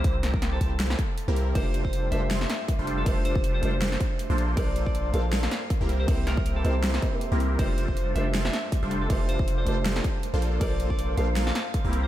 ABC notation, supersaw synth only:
X:1
M:4/4
L:1/16
Q:"Swing 16ths" 1/4=159
K:F
V:1 name="Supersaw synth"
[B,EGc]6 [B,CEGc]4 z3 [B,CEGB]3 | [G,DFA]6 [G,DFAc]4 z3 [G,DFAc]3 | [DA]6 [G,DFAc]4 z3 [B,DFAc]3 | z6 [B,DFAc]4 z3 [B,CEGB]3 |
[B,CEG]6 [B,CEGc]4 z3 [B,CEGB]3 | [G,DFAc]6 [G,DFAc]4 z3 [G,DFAc]3 | [G,DFAc]6 [G,DFAc]4 z3 [B,DFAc]3 | [B,DA]6 [B,DFAc]4 z3 [B,CEGB]3 |]